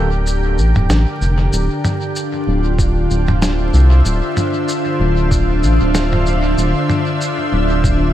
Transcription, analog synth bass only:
Already playing: D1
0.58 A1
0.76 D1
0.90 A1
1.21 F1
1.53 D1
2.47 D1
3.10 D1
3.73 C2
4.05 D1
5.00 D1
5.63 A1
5.81 D1
6.57 D1
7.52 D1

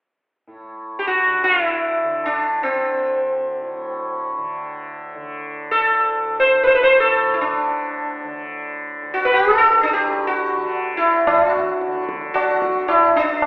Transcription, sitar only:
0.99 G4
1.07 F#4
1.44 F4
1.63 E4
2.26 D4
2.63 C4
5.71 A4
6.40 C5
6.64 B4 C5
6.75 B4
6.83 C5
7.00 A4
7.34 E4
7.41 D4
9.14 F#4
9.25 B4
9.34 A4
9.58 A4
9.83 D4
9.93 G4
10.27 F#4
10.97 E4
11.27 E4
11.49 F#4
12.34 F#4
12.88 E4
13.17 D4

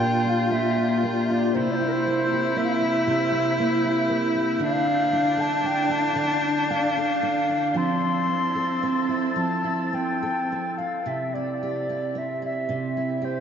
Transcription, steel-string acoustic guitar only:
Already playing: A#3 D4 G4
0.00 A#2
0.25 D4
0.51 A#3
0.77 G4
1.03 A#3
1.30 D4
1.54 C3
1.81 E4
2.07 A#3
2.33 G4
2.56 A#3
2.82 E4
3.07 C3
3.32 E4
3.59 A#3
3.84 G4
4.10 A#3
4.35 E4
4.59 D3
5.13 D4
5.37 A4
5.64 D4
5.89 E4
6.15 D3
6.70 D4
6.97 A4
7.23 D4
7.49 E4
7.74 F3
8.00 E4
8.27 C4
8.55 A4
8.83 C4
9.09 E4
9.36 F3
9.64 E4
9.93 C4
10.23 A4
10.52 C4
10.78 E4
11.06 C3
11.35 E4
11.63 G4
11.89 E4
12.15 C4
12.42 E4
12.69 C3
12.97 E4
13.22 G4

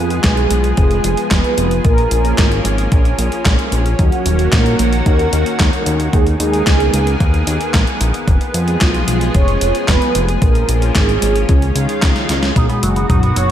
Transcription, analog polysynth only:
Already playing: F3 F4
0.24 G#3 G#4
0.77 G#3 G#4
1.31 B3 B4
1.85 A#3 A#4
2.12 A#3 A#4
3.99 F#3 F#4
4.53 A#3 A#4
5.07 A#3 A#4
6.13 G#3 G#4
6.40 G#3 G#4
8.81 F3 F4
9.35 C#4 C#5
9.89 B3 B4
10.42 A#3 A#4
10.96 G#3 G#4
12.56 G#3 G#4
13.10 F#3 F#4
13.37 C#4 C#5

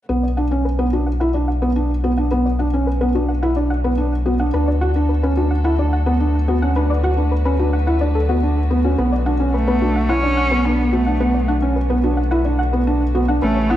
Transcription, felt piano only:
0.09 B3
0.37 D4
0.51 C#4
0.79 B3
0.93 D4
1.21 E4
1.34 D4
1.62 B3
1.76 D4
2.04 B3
2.18 D4
2.32 B3
2.59 D4
2.74 C#4
3.01 B3
3.15 D4
3.43 E4
3.56 D4
3.84 B3
3.98 D4
4.26 B3
4.39 D4
4.54 D4
4.81 F#4
4.96 D4
5.23 C#4
5.37 D4
5.64 E4
5.78 D4
6.06 B3
6.20 D4
6.48 B3
6.62 C#4
6.76 D4
7.03 F#4
7.17 D4
7.45 C#4
7.59 D4
7.87 E4
8.01 D4
8.29 B3
8.43 D4
8.71 B3
8.84 C#4
8.98 B3
9.26 D4
9.40 C#4
9.68 B3
9.81 D4
10.09 E4
10.23 D4
10.51 B3
10.65 D4
10.93 B3
11.07 D4
11.20 B3
11.48 D4
11.62 C#4
11.90 B3
12.04 D4
12.31 E4
12.45 D4
12.73 B3
12.87 D4
13.15 B3
13.28 D4
13.43 C#4
13.70 E4

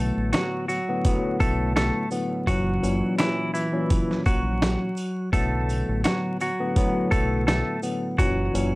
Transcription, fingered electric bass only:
Already playing: B1
0.17 A1
1.41 B1
2.47 F#1
2.83 F#1
4.26 A#1
5.33 B1
5.89 A1
7.12 B1
8.19 F#1
8.54 F#1

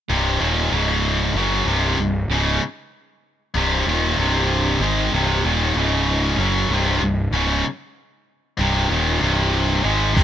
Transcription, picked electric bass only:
0.10 C1
0.41 D#1
0.72 C#1
1.34 F#1
1.65 C1
1.97 C1
2.28 C#1
3.55 C1
3.86 D#1
4.17 C1
4.79 G#1
5.12 C1
5.44 D#1
5.75 C#1
6.37 F#1
6.68 C1
7.00 C1
7.31 C#1
8.59 C1
8.90 D#1
9.21 C1
9.84 G#1
10.17 C1

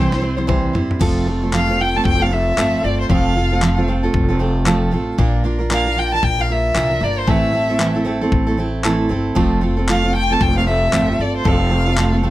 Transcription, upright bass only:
Already playing: C2
0.75 G1
1.01 F1
2.05 F1
2.57 G1
2.84 G1
3.10 F1
4.14 F1
4.92 A1
5.18 A#1
6.23 A#1
6.75 C2
7.01 G1
7.28 A1
8.32 A1
9.10 G1
9.37 F1
10.41 F1
10.93 G1
11.19 G1
11.45 F1

